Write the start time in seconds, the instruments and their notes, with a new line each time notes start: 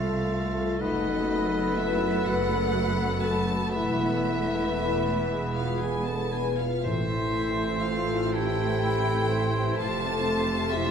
Already playing: double bass section C2, cello section C2, harp F2 C3 A3 C4 A4, violin section A3 C4 F5, viola section A3, bassoon A3, french horn section F4, clarinet A4, oboe A4, flute C6
0.12 harp C3, violin section A3
0.36 violin section A3
0.57 harp C3, violin section A3
0.79 double bass section F#1, harp F#2, cello section F#2, viola section F#3 A3, violin section A3 B3 D#5, bassoon B3, french horn section D#4, clarinet A4, oboe B4, flute B5
1.04 harp F#3, violin section B3
1.28 harp A3, violin section A3
1.52 harp B3, violin section B3
1.76 violin section A3 E5, french horn section E4
2.01 harp B3, violin section B3
2.24 double bass section F#1, cello section F#2, violin section A3 F#5, french horn section F#4, harp B4
2.50 harp B3, violin section B3
2.73 violin section A3, harp A3
2.98 harp F#3, violin section B3
3.23 violin section A3 A5, harp A3, french horn section A4
3.50 harp F#3, violin section B3
3.75 double bass section E1, harp E2, cello section E2, viola section E3, violin section A3 E5, french horn section E4, oboe B4
4.01 harp B2, violin section B3
4.29 violin section A3
4.53 harp B3, violin section B3
4.78 violin section A3, harp B4
5.03 violin section B3, harp B3
5.28 double bass section E1, harp E2, cello section E2, violin section G#3, viola section G#3, clarinet G#4
5.55 harp B2, violin section B3 F5, french horn section F4
5.81 violin section G#3 G#5, harp G#3, french horn section G#4
6.06 violin section B3 A5, harp B3, french horn section A4
6.32 violin section G#3 G#5, french horn section G#4
6.58 violin section B3 F5, harp B3, french horn section F4
6.84 double bass section A1, harp A2, cello section A2, timpani A2, viola section E3 A3, violin section A3 C4 E5, bassoon C4, french horn section E4, clarinet A4, oboe C5, flute C6
7.10 harp E3
7.35 harp A3
7.83 french horn section F4, harp A4, violin section F5
8.09 harp C4
8.32 oboe E4, french horn section G4, violin section G5, flute A5
8.58 harp C4
8.83 harp A3, flute B5
9.08 harp E3
9.31 flute C6
9.56 harp E3
9.78 double bass section F1, cello section F2, harp F3, viola section A3, oboe F4, clarinet G4, french horn section A4, violin section A5, flute C6
10.03 harp A3
10.26 harp C4
10.49 harp A4
10.71 harp C4, french horn section E4, violin section E5